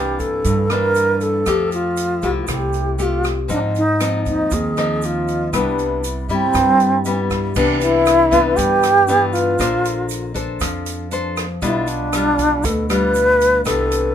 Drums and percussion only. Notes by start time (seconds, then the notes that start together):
0.19 kick, closed hi-hat, shaker
0.44 kick, closed hi-hat, shaker
0.70 cross-stick, closed hi-hat, shaker
0.95 closed hi-hat, shaker
1.21 closed hi-hat, shaker
1.46 kick, cross-stick, closed hi-hat, shaker
1.71 closed hi-hat, shaker
1.96 closed hi-hat, shaker
2.22 kick, closed hi-hat, shaker
2.47 kick, cross-stick, closed hi-hat, shaker
2.73 closed hi-hat, shaker
2.99 closed hi-hat, shaker
3.24 cross-stick, closed hi-hat, shaker
3.49 kick, closed hi-hat, shaker
3.75 closed hi-hat, shaker
4.00 cross-stick, closed hi-hat, shaker
4.25 kick, closed hi-hat, shaker
4.50 kick, closed hi-hat, shaker
4.77 cross-stick, closed hi-hat, shaker
5.02 closed hi-hat, shaker
5.28 closed hi-hat, shaker
5.53 kick, cross-stick, closed hi-hat, shaker
5.79 closed hi-hat, shaker
6.04 closed hi-hat, shaker
6.29 closed hi-hat, shaker
6.53 kick, cross-stick, closed hi-hat, shaker
6.80 closed hi-hat, shaker
7.05 closed hi-hat, shaker
7.30 kick, cross-stick, closed hi-hat, shaker
7.54 kick, crash, shaker
7.80 closed hi-hat, shaker
8.06 cross-stick, closed hi-hat, shaker
8.32 kick, closed hi-hat, shaker
8.57 kick, closed hi-hat, shaker
8.82 cross-stick, closed hi-hat, shaker
9.07 closed hi-hat, shaker
9.33 closed hi-hat, shaker
9.58 kick, cross-stick, closed hi-hat, shaker
9.85 closed hi-hat, shaker
10.09 closed hi-hat, shaker
10.35 kick, closed hi-hat, shaker
10.60 kick, cross-stick, closed hi-hat, shaker
10.86 closed hi-hat, shaker
11.11 closed hi-hat, shaker
11.36 cross-stick, closed hi-hat, shaker
11.62 kick, closed hi-hat, shaker
11.87 closed hi-hat, shaker
12.13 cross-stick, closed hi-hat, shaker
12.38 kick, closed hi-hat, shaker
12.63 kick, closed hi-hat, shaker
12.89 cross-stick, closed hi-hat, shaker
13.14 closed hi-hat, shaker
13.40 closed hi-hat, shaker
13.65 kick, cross-stick, closed hi-hat, shaker
13.91 closed hi-hat, shaker